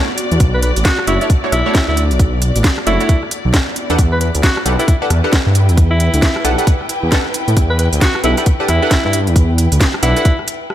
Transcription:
Already playing: string section B3 F#4 D5
0.18 closed hi-hat
0.31 detuned saw bass E2, closed hi-hat
0.40 detuned saw bass B1, kick, closed hi-hat
0.54 alto saxophone B4
0.62 alto saxophone B4, closed hi-hat
0.76 detuned saw bass A1, closed hi-hat
0.85 alto saxophone F#4, kick, snare, closed hi-hat
0.99 cross-stick
1.07 detuned saw bass F#1, synth stab A3 D4 E4 F#4 C#5, alto saxophone E4, closed hi-hat
1.21 synth stab A3 D4 E4 F#4 C#5, alto saxophone E4, closed hi-hat
1.30 kick, closed hi-hat
1.44 synth stab A3 D4 E4 F#4 C#5
1.52 detuned saw bass B1, alto saxophone E4, cross-stick, closed hi-hat
1.66 synth stab A3 D4 E4 F#4 C#5
1.75 kick, snare, closed hi-hat
1.88 detuned saw bass D2, alto saxophone E4
1.97 closed hi-hat
2.11 detuned saw bass B1, closed hi-hat
2.19 kick, closed hi-hat
2.42 closed hi-hat
2.56 detuned saw bass A1, closed hi-hat
2.64 kick, snare, closed hi-hat
2.78 cross-stick
2.87 detuned saw bass F#1, synth stab A3 D4 E4 F#4 C#5, alto saxophone E4, closed hi-hat
3.00 synth stab A3 D4 E4 F#4 C#5, closed hi-hat
3.09 kick, closed hi-hat
3.23 cross-stick
3.31 closed hi-hat
3.45 detuned saw bass B1
3.54 kick, snare, closed hi-hat
3.76 string section E4, closed hi-hat
3.90 detuned saw bass E2, synth stab D4 G4 A4 B4 F#5, closed hi-hat
3.98 detuned saw bass E2, kick, closed hi-hat
4.12 alto saxophone B4
4.21 alto saxophone B4, closed hi-hat
4.35 detuned saw bass D2, closed hi-hat
4.43 alto saxophone F#4, kick, snare, closed hi-hat
4.57 string section B4, cross-stick
4.66 detuned saw bass B1, synth stab D4 G4 A4 B4 F#5, closed hi-hat
4.79 synth stab D4 G4 A4 B4 F#5, alto saxophone E4, closed hi-hat
4.88 alto saxophone E4, kick, closed hi-hat
5.02 synth stab D4 G4 A4 B4 F#5
5.10 detuned saw bass E2, cross-stick, closed hi-hat
5.24 synth stab D4 G4 A4 B4 F#5
5.33 kick, snare, closed hi-hat
5.47 detuned saw bass G2, string section G5
5.55 closed hi-hat
5.69 detuned saw bass E2, closed hi-hat
5.77 kick, closed hi-hat
5.91 alto saxophone E4
6.00 closed hi-hat
6.14 detuned saw bass D2, closed hi-hat
6.22 kick, snare, closed hi-hat
6.36 cross-stick
6.45 detuned saw bass B1, synth stab D4 G4 A4 B4 F#5, closed hi-hat
6.58 synth stab D4 G4 A4 B4 F#5, closed hi-hat
6.67 kick, closed hi-hat
6.81 cross-stick
6.89 closed hi-hat
7.03 detuned saw bass E2
7.12 synth stab D4 G4 A4 B4 F#5, kick, snare, closed hi-hat
7.34 closed hi-hat
7.48 detuned saw bass A2, closed hi-hat
7.57 detuned saw bass E2, kick, closed hi-hat
7.70 alto saxophone B4
7.79 alto saxophone B4, closed hi-hat
7.93 detuned saw bass D2, closed hi-hat
8.01 alto saxophone F#4, kick, snare, closed hi-hat
8.15 cross-stick
8.24 detuned saw bass B1, synth stab D4 G4 A4 B4 F#5, alto saxophone E4, closed hi-hat
8.37 synth stab D4 G4 A4 B4 F#5, alto saxophone E4, closed hi-hat
8.46 kick, closed hi-hat
8.60 synth stab D4 G4 A4 B4 F#5
8.68 detuned saw bass E2, alto saxophone E4, cross-stick, closed hi-hat
8.82 synth stab D4 G4 A4 B4 F#5
8.91 kick, snare, closed hi-hat
9.05 detuned saw bass G2, alto saxophone E4
9.13 closed hi-hat
9.27 detuned saw bass E2, closed hi-hat
9.36 kick, closed hi-hat
9.58 closed hi-hat
9.72 detuned saw bass D2, closed hi-hat
9.80 kick, snare, closed hi-hat
9.94 cross-stick
10.03 detuned saw bass B1, synth stab D4 G4 A4 B4 F#5, alto saxophone E4, closed hi-hat
10.16 synth stab D4 G4 A4 B4 F#5, closed hi-hat
10.25 kick, closed hi-hat
10.39 cross-stick
10.48 closed hi-hat
10.70 cross-stick

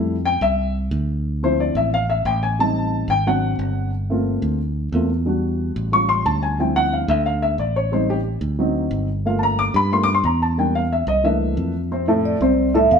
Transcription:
Already playing: fingered electric bass F2, upright piano G3 A3 E4
0.25 upright piano G5
0.41 fingered electric bass C2, upright piano E5
0.91 fingered electric bass D2
1.43 upright piano F3 C4 E4 C5
1.60 upright piano D5
1.75 fingered electric bass A1, upright piano E5
1.94 upright piano F5
2.10 upright piano E5
2.25 fingered electric bass A1, upright piano G5
2.43 upright piano G#5
2.59 upright piano G3 C4 D#4 A5
3.08 fingered electric bass G#1, upright piano G5
3.27 upright piano F#3 C4 D4 F#5
3.59 fingered electric bass G1
4.10 upright piano A3 A#3 C4 F4
4.42 fingered electric bass D2
4.92 fingered electric bass E2, upright piano A3 A#3 C4 F4
5.26 upright piano G3 D4 F#4
5.76 fingered electric bass A1
5.92 upright piano G3 C#4 F4 C#6
6.09 upright piano C6
6.26 fingered electric bass D2, upright piano A5
6.43 upright piano G#5
6.59 upright piano F3 G3 C4 E4 G5
6.76 upright piano F#5
6.93 upright piano F5
7.08 fingered electric bass D2, upright piano E5
7.26 upright piano F5
7.42 upright piano E5
7.58 fingered electric bass A1, upright piano D5
7.76 upright piano C#5
7.92 upright piano G3 C4 D#4 C5
8.10 upright piano G4
8.41 fingered electric bass D2
8.59 upright piano F#3 C4 D#4
8.91 fingered electric bass G1
9.25 upright piano A3 A#3 F4 F5
9.39 upright piano A5
9.43 upright piano A#5
9.59 upright piano D6
9.74 fingered electric bass G2, upright piano B5
9.92 upright piano A3 A#3 F4 C6
10.03 upright piano D6
10.14 upright piano C6
10.24 fingered electric bass E2, upright piano A#5
10.42 upright piano A5
10.58 upright piano G3 A#3 D4 G5
10.75 upright piano F5
10.93 upright piano E5
11.07 fingered electric bass C2, upright piano D#5
11.24 upright piano E3 A3 A#3 D4 E5
11.57 fingered electric bass F2
11.91 upright piano C3 C4 C5
12.08 upright piano A2 A3 A4
12.25 vibraphone D5
12.41 fingered electric bass C2, upright piano C3 C4 C5
12.74 upright piano A2 A3 A4, vibraphone E5
12.91 fingered electric bass E2, vibraphone F5

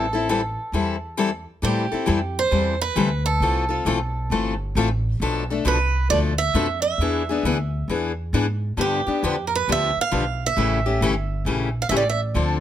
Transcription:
Already playing: upright bass A1, steel-string acoustic guitar A4
0.13 steel-string acoustic guitar C4 E4 A4
0.29 steel-string acoustic guitar E3 G3 C4 E4 A4
0.72 upright bass E2, steel-string acoustic guitar E3 G3 C4 E4 A4
1.17 steel-string acoustic guitar E3 G3 C4 E4 A4
1.62 upright bass A2, steel-string acoustic guitar E3 G3 C4 E4 G4 A4
1.92 steel-string acoustic guitar C4 E4 A4, muted upright bass stroke
2.06 upright bass F2, steel-string acoustic guitar E3 G3 C4 E4 A4
2.39 steel-string acoustic guitar C5
2.51 upright bass E2, steel-string acoustic guitar E3 G3 C4 E4 A4
2.81 steel-string acoustic guitar B4
2.95 upright bass D2, steel-string acoustic guitar E3 G3 C4 E4 A4
3.26 steel-string acoustic guitar A4
3.40 upright bass C2, steel-string acoustic guitar E3 A3 C4 F4 A4
3.69 steel-string acoustic guitar C4 F4 A4
3.85 upright bass B1, steel-string acoustic guitar E3 A3 C4 F4 A4
4.30 upright bass G1, steel-string acoustic guitar E3 A3 C4 F4 A4
4.75 upright bass A1, steel-string acoustic guitar E3 A3 C4 F4 A4
5.20 upright bass B1, steel-string acoustic guitar B2 F3 A3 D4 A4
5.50 steel-string acoustic guitar A3 D4 A4
5.65 upright bass C2, steel-string acoustic guitar B2 F3 A3 D4 A4 B4
6.10 upright bass D2, steel-string acoustic guitar B2 F3 A3 D4 A4 D5
6.38 steel-string acoustic guitar E5
6.54 upright bass F2, steel-string acoustic guitar B2 F3 A3 D4 A4
6.82 steel-string acoustic guitar E5
6.98 upright bass E2, steel-string acoustic guitar E3 B3 D4 G#4
7.29 steel-string acoustic guitar B3 D4 G#4
7.43 upright bass D2, steel-string acoustic guitar E3 B3 D4 G#4
7.88 upright bass E2, steel-string acoustic guitar E3 B3 D4 G#4
8.33 upright bass G#2, steel-string acoustic guitar E3 B3 D4 G#4
8.77 upright bass G2, steel-string acoustic guitar D3 F3 B3 D4 G4
8.81 steel-string acoustic guitar G4
9.06 steel-string acoustic guitar B3 D4 G4, muted upright bass stroke
9.23 upright bass F2, steel-string acoustic guitar D3 F3 B3 D4 G4
9.47 steel-string acoustic guitar A#4
9.55 steel-string acoustic guitar B4
9.67 upright bass D2, steel-string acoustic guitar D3 F3 B3 D4 G4
9.72 steel-string acoustic guitar E5
9.96 muted upright bass stroke
10.01 steel-string acoustic guitar F5
10.11 upright bass B1, steel-string acoustic guitar D3 F3 B3 D4 G4
10.46 steel-string acoustic guitar E5
10.57 upright bass A1, steel-string acoustic guitar C#3 E3 A3 C#4 G4
10.86 steel-string acoustic guitar A3 C#4 G4
11.01 upright bass G1, steel-string acoustic guitar C#3 E3 A3 C#4 G4
11.45 upright bass A#1, steel-string acoustic guitar C#3 E3 A3 C#4 G4
11.82 steel-string acoustic guitar F5
11.89 upright bass A1, steel-string acoustic guitar C#3 E3 A3 C#4 G4 E5
11.96 steel-string acoustic guitar D5
12.09 steel-string acoustic guitar E5
12.34 upright bass D2, steel-string acoustic guitar D3 F3 C4 D4 A4

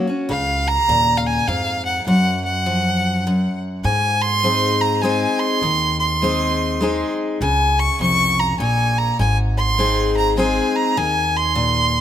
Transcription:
0.07 steel-string acoustic guitar C#4 F#4
0.29 upright bass C#2, steel-string acoustic guitar C#3, fiddle F5
0.68 fiddle A#5
0.88 upright bass D#2, steel-string acoustic guitar A#2
1.17 fiddle F5
1.26 fiddle G#5
1.47 upright bass F2, steel-string acoustic guitar G#2, fiddle F5
1.85 fiddle F#5
2.07 upright bass F#2, steel-string acoustic guitar F#2, fiddle F#5
2.45 fiddle F#5
2.66 steel-string acoustic guitar F3
3.27 steel-string acoustic guitar F#2
3.84 steel-string acoustic guitar G#2, upright bass G#2, fiddle G#5
4.22 fiddle C6
4.43 steel-string acoustic guitar G#3 C4 D#4 G#4
4.81 fiddle A#5
5.02 steel-string acoustic guitar G#3 C4 D#4 G#4, fiddle G#5
5.40 fiddle C6
5.62 upright bass D#2, steel-string acoustic guitar D#3
5.99 fiddle C6
6.22 steel-string acoustic guitar G#3 C4 D#4 G#4
6.81 steel-string acoustic guitar G#3 C4 D#4 G#4
7.41 upright bass C#2, steel-string acoustic guitar C#3, fiddle G#5
7.79 fiddle C#6
8.00 upright bass C2, steel-string acoustic guitar F2, fiddle C#6
8.39 fiddle A#5
8.59 upright bass A#1, steel-string acoustic guitar A#2, fiddle G#5
8.98 fiddle A#5
9.19 upright bass G#1, steel-string acoustic guitar G#2, fiddle G#5
9.57 fiddle C6
9.78 steel-string acoustic guitar G#3 C4 D#4 G#4
10.17 fiddle A#5
10.37 steel-string acoustic guitar G#3 C4 D#4 G#4, fiddle G#5
10.76 fiddle A#5
10.97 upright bass D#2, steel-string acoustic guitar D#3, fiddle G#5
11.36 fiddle C6
11.55 steel-string acoustic guitar A#2

